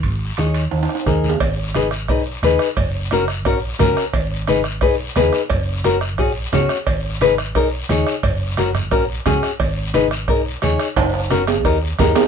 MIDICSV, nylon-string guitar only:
0, 0, Header, 1, 2, 480
1, 0, Start_track
1, 0, Key_signature, 5, "minor"
1, 0, Tempo, 341491
1, 53, Time_signature, 4, 2, 24, 8
1, 17257, End_track
2, 0, Start_track
2, 0, Title_t, "Nylon-string guitar"
2, 0, Program_c, 0, 24
2, 529, Note_on_c, 0, 63, 69
2, 533, Note_on_c, 0, 68, 66
2, 539, Note_on_c, 0, 73, 77
2, 869, Note_off_c, 0, 63, 0
2, 870, Note_off_c, 0, 68, 0
2, 874, Note_off_c, 0, 73, 0
2, 1488, Note_on_c, 0, 63, 71
2, 1495, Note_on_c, 0, 68, 66
2, 1502, Note_on_c, 0, 70, 75
2, 1829, Note_off_c, 0, 63, 0
2, 1832, Note_off_c, 0, 68, 0
2, 1836, Note_off_c, 0, 70, 0
2, 2460, Note_on_c, 0, 63, 82
2, 2467, Note_on_c, 0, 68, 75
2, 2475, Note_on_c, 0, 71, 96
2, 2627, Note_off_c, 0, 63, 0
2, 2631, Note_off_c, 0, 68, 0
2, 2633, Note_off_c, 0, 71, 0
2, 2942, Note_on_c, 0, 63, 74
2, 2949, Note_on_c, 0, 68, 66
2, 2954, Note_on_c, 0, 71, 83
2, 3108, Note_off_c, 0, 63, 0
2, 3110, Note_off_c, 0, 68, 0
2, 3114, Note_off_c, 0, 71, 0
2, 3420, Note_on_c, 0, 63, 81
2, 3428, Note_on_c, 0, 68, 76
2, 3433, Note_on_c, 0, 71, 88
2, 3756, Note_off_c, 0, 63, 0
2, 3756, Note_off_c, 0, 68, 0
2, 3761, Note_off_c, 0, 71, 0
2, 4383, Note_on_c, 0, 61, 86
2, 4392, Note_on_c, 0, 66, 80
2, 4396, Note_on_c, 0, 70, 92
2, 4549, Note_off_c, 0, 61, 0
2, 4551, Note_off_c, 0, 66, 0
2, 4554, Note_off_c, 0, 70, 0
2, 4856, Note_on_c, 0, 61, 80
2, 4866, Note_on_c, 0, 66, 68
2, 4867, Note_on_c, 0, 70, 83
2, 5025, Note_off_c, 0, 61, 0
2, 5028, Note_off_c, 0, 66, 0
2, 5030, Note_off_c, 0, 70, 0
2, 5327, Note_on_c, 0, 61, 84
2, 5333, Note_on_c, 0, 66, 76
2, 5341, Note_on_c, 0, 70, 90
2, 5668, Note_off_c, 0, 61, 0
2, 5670, Note_off_c, 0, 66, 0
2, 5675, Note_off_c, 0, 70, 0
2, 6290, Note_on_c, 0, 63, 90
2, 6297, Note_on_c, 0, 68, 77
2, 6306, Note_on_c, 0, 71, 99
2, 6461, Note_off_c, 0, 63, 0
2, 6465, Note_off_c, 0, 68, 0
2, 6469, Note_off_c, 0, 71, 0
2, 6769, Note_on_c, 0, 63, 77
2, 6780, Note_on_c, 0, 71, 86
2, 6781, Note_on_c, 0, 68, 75
2, 6942, Note_off_c, 0, 63, 0
2, 6944, Note_off_c, 0, 68, 0
2, 6946, Note_off_c, 0, 71, 0
2, 7253, Note_on_c, 0, 63, 84
2, 7260, Note_on_c, 0, 68, 75
2, 7265, Note_on_c, 0, 71, 91
2, 7591, Note_off_c, 0, 63, 0
2, 7593, Note_off_c, 0, 68, 0
2, 7596, Note_off_c, 0, 71, 0
2, 8209, Note_on_c, 0, 61, 82
2, 8217, Note_on_c, 0, 66, 79
2, 8226, Note_on_c, 0, 70, 89
2, 8380, Note_off_c, 0, 61, 0
2, 8385, Note_off_c, 0, 66, 0
2, 8387, Note_off_c, 0, 70, 0
2, 8689, Note_on_c, 0, 61, 72
2, 8698, Note_on_c, 0, 66, 75
2, 8703, Note_on_c, 0, 68, 89
2, 8862, Note_off_c, 0, 61, 0
2, 8863, Note_off_c, 0, 66, 0
2, 8868, Note_off_c, 0, 68, 0
2, 9171, Note_on_c, 0, 61, 80
2, 9180, Note_on_c, 0, 66, 77
2, 9187, Note_on_c, 0, 73, 89
2, 9509, Note_off_c, 0, 61, 0
2, 9514, Note_off_c, 0, 66, 0
2, 9517, Note_off_c, 0, 73, 0
2, 10137, Note_on_c, 0, 63, 84
2, 10142, Note_on_c, 0, 68, 84
2, 10147, Note_on_c, 0, 71, 93
2, 10305, Note_off_c, 0, 63, 0
2, 10306, Note_off_c, 0, 68, 0
2, 10309, Note_off_c, 0, 71, 0
2, 10614, Note_on_c, 0, 63, 79
2, 10620, Note_on_c, 0, 68, 72
2, 10627, Note_on_c, 0, 70, 87
2, 10783, Note_off_c, 0, 63, 0
2, 10787, Note_off_c, 0, 68, 0
2, 10788, Note_off_c, 0, 70, 0
2, 11099, Note_on_c, 0, 63, 89
2, 11106, Note_on_c, 0, 68, 77
2, 11111, Note_on_c, 0, 73, 92
2, 11433, Note_off_c, 0, 63, 0
2, 11437, Note_off_c, 0, 68, 0
2, 11438, Note_off_c, 0, 73, 0
2, 12055, Note_on_c, 0, 61, 83
2, 12062, Note_on_c, 0, 66, 81
2, 12064, Note_on_c, 0, 70, 96
2, 12223, Note_off_c, 0, 61, 0
2, 12224, Note_off_c, 0, 66, 0
2, 12228, Note_off_c, 0, 70, 0
2, 12525, Note_on_c, 0, 61, 77
2, 12532, Note_on_c, 0, 66, 73
2, 12539, Note_on_c, 0, 70, 84
2, 12698, Note_off_c, 0, 61, 0
2, 12701, Note_off_c, 0, 66, 0
2, 12705, Note_off_c, 0, 70, 0
2, 13010, Note_on_c, 0, 61, 83
2, 13017, Note_on_c, 0, 66, 77
2, 13021, Note_on_c, 0, 68, 90
2, 13349, Note_off_c, 0, 61, 0
2, 13350, Note_off_c, 0, 66, 0
2, 13354, Note_off_c, 0, 68, 0
2, 13968, Note_on_c, 0, 63, 89
2, 13976, Note_on_c, 0, 68, 79
2, 13979, Note_on_c, 0, 71, 99
2, 14140, Note_off_c, 0, 63, 0
2, 14142, Note_off_c, 0, 68, 0
2, 14145, Note_off_c, 0, 71, 0
2, 14455, Note_on_c, 0, 63, 80
2, 14461, Note_on_c, 0, 68, 72
2, 14471, Note_on_c, 0, 70, 87
2, 14623, Note_off_c, 0, 63, 0
2, 14626, Note_off_c, 0, 68, 0
2, 14629, Note_off_c, 0, 70, 0
2, 14928, Note_on_c, 0, 63, 84
2, 14936, Note_on_c, 0, 68, 78
2, 14944, Note_on_c, 0, 73, 91
2, 15267, Note_off_c, 0, 63, 0
2, 15271, Note_off_c, 0, 68, 0
2, 15276, Note_off_c, 0, 73, 0
2, 15886, Note_on_c, 0, 61, 89
2, 15889, Note_on_c, 0, 66, 76
2, 15899, Note_on_c, 0, 70, 97
2, 16059, Note_off_c, 0, 61, 0
2, 16062, Note_off_c, 0, 66, 0
2, 16062, Note_off_c, 0, 70, 0
2, 16370, Note_on_c, 0, 63, 79
2, 16378, Note_on_c, 0, 67, 73
2, 16381, Note_on_c, 0, 70, 90
2, 16541, Note_off_c, 0, 63, 0
2, 16543, Note_off_c, 0, 67, 0
2, 16546, Note_off_c, 0, 70, 0
2, 16854, Note_on_c, 0, 63, 89
2, 16865, Note_on_c, 0, 67, 75
2, 16865, Note_on_c, 0, 70, 93
2, 17192, Note_off_c, 0, 63, 0
2, 17194, Note_off_c, 0, 67, 0
2, 17196, Note_off_c, 0, 70, 0
2, 17257, End_track
0, 0, End_of_file